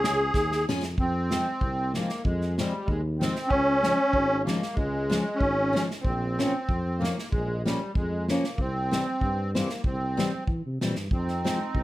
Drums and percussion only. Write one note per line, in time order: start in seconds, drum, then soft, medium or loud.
0.04 snare medium
0.34 kick medium
0.34 snare soft
0.52 snare soft
0.69 snare medium
0.83 snare medium
0.98 kick medium
1.31 snare medium
1.61 kick medium
1.94 snare medium
2.09 snare soft
2.25 kick medium
2.41 snare soft
2.58 snare medium
2.88 kick medium
3.22 snare medium
3.36 snare soft
3.51 kick medium
3.83 snare medium
4.13 kick medium
4.47 snare medium
4.62 snare soft
4.77 kick medium
5.11 snare medium
5.41 kick medium
5.76 snare medium
5.91 snare soft
6.05 kick medium
6.39 snare medium
6.69 kick medium
7.04 snare medium
7.19 snare medium
7.32 kick medium
7.66 snare medium
7.95 kick medium
8.29 snare medium
8.44 snare medium
8.58 kick medium
8.92 snare medium
9.21 kick medium
9.55 snare medium
9.70 snare soft
9.84 kick medium
10.19 snare medium
10.47 kick medium
10.81 snare medium
10.96 snare soft
11.11 kick medium
11.28 snare soft
11.46 snare medium
11.75 kick medium